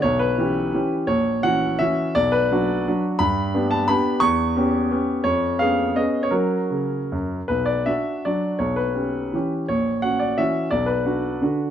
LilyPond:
\new Staff \with { instrumentName = "Grand piano" } { \time 3/4 \key b \minor \tempo 4 = 170 << { cis''8 b'2 r8 | cis''4 fis''4 e''4 | d''8 b'2 r8 | b''4. a''8 b''4 |
cis'''2. | cis''4 eis''4 dis''8. cis''16 | ais'2~ ais'8 r8 | b'8 d''8 e''4 d''4 |
cis''8 b'2 r8 | cis''4 fis''8 d''8 e''4 | d''8 b'2 r8 | } \\ { b,,4 <e cis' g'>4 <e cis' g'>4 | ais,,4 <e cis' fis'>4 <e cis' fis'>4 | b,,4 <fis d' fis'>4 <fis d' fis'>4 | g,4 <b d' g'>4 <b d' g'>4 |
e,4 <b cis' g'>4 <b cis' g'>4 | eis,4 <b cis' gis'>4 <b cis' gis'>4 | <fis cis' fis'>4 cis4 fis,4 | b,,4 <d' fis'>4 <fis d' fis'>4 |
b,,4 <cis' g'>4 <e cis' g'>4 | ais,,4 <cis' fis'>4 <e cis' fis'>4 | b,,4 <d' fis'>4 <d d' fis'>4 | } >> }